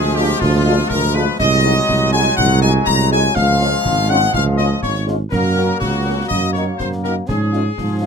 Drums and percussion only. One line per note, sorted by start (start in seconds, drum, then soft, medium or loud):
0.41 concert bass drum medium
0.41 snare medium
0.90 concert bass drum medium
0.90 snare medium
1.40 concert bass drum loud
1.40 snare medium
1.40 crash medium
1.65 snare medium
1.89 concert bass drum medium
1.89 snare medium
2.38 concert bass drum medium
2.63 snare medium
2.87 concert bass drum medium
2.87 snare medium
2.99 snare medium
3.12 snare medium
3.36 concert bass drum medium
3.36 snare medium
3.61 snare medium
3.85 concert bass drum medium
3.85 snare medium
4.34 concert bass drum medium
4.59 snare medium
4.83 concert bass drum medium
4.83 snare medium
4.95 snare medium
5.08 snare medium
5.32 concert bass drum medium
5.32 snare medium
5.32 crash soft
5.57 snare medium
5.81 concert bass drum medium
5.81 snare medium
6.31 concert bass drum medium
6.55 snare medium
6.80 concert bass drum medium
6.80 snare medium
6.92 snare medium
7.04 snare medium
7.29 concert bass drum medium
7.29 snare medium
7.53 snare soft
7.78 concert bass drum medium
7.78 snare medium